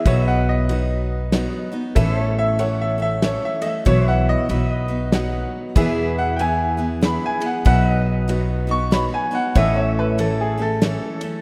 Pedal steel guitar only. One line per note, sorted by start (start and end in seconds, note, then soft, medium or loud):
0.07 1.95 B4 medium
0.07 0.28 E5 medium
0.28 1.95 D#5 medium
1.96 2.21 B4 medium
1.96 3.85 E5 medium
2.21 3.84 C#5 medium
3.87 4.08 C#5 medium
3.87 4.50 E5 medium
4.08 4.49 B4 medium
4.51 5.75 B4 medium
4.51 4.71 E5 medium
4.71 5.76 D#5 medium
5.76 7.64 B4 medium
5.76 7.65 E5 medium
7.67 9.55 B4 medium
7.67 7.88 E5 medium
7.88 9.55 D#5 medium
9.56 11.42 C#5 medium
9.56 9.78 D#5 medium
9.78 11.42 E5 medium